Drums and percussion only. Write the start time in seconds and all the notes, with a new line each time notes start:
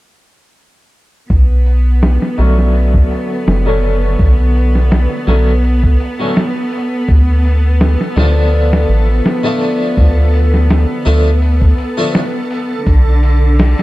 1.30 kick, open hi-hat
1.66 open hi-hat
2.02 snare, open hi-hat
2.22 snare
2.38 open hi-hat
2.58 snare
2.75 open hi-hat
2.94 kick
3.11 open hi-hat
3.47 snare, open hi-hat
3.83 open hi-hat
4.19 kick, open hi-hat
4.55 open hi-hat
4.75 snare
4.91 snare, open hi-hat
5.28 snare, open hi-hat
5.47 closed hi-hat
5.64 open hi-hat
5.83 kick
6.00 open hi-hat
6.36 snare, open hi-hat
6.72 open hi-hat
7.09 kick, open hi-hat
7.45 open hi-hat
7.80 snare, open hi-hat
8.01 snare
8.17 snare, open hi-hat
8.53 open hi-hat
8.72 snare, open hi-hat
9.09 open hi-hat
9.25 snare, open hi-hat
9.62 open hi-hat
9.97 kick, open hi-hat
10.33 open hi-hat
10.54 snare
10.70 snare, open hi-hat
11.06 open hi-hat
11.26 closed hi-hat
11.42 open hi-hat
11.62 kick
11.78 open hi-hat
12.14 snare, open hi-hat
12.51 open hi-hat
12.87 kick, open hi-hat
13.23 open hi-hat
13.59 snare, open hi-hat
13.79 snare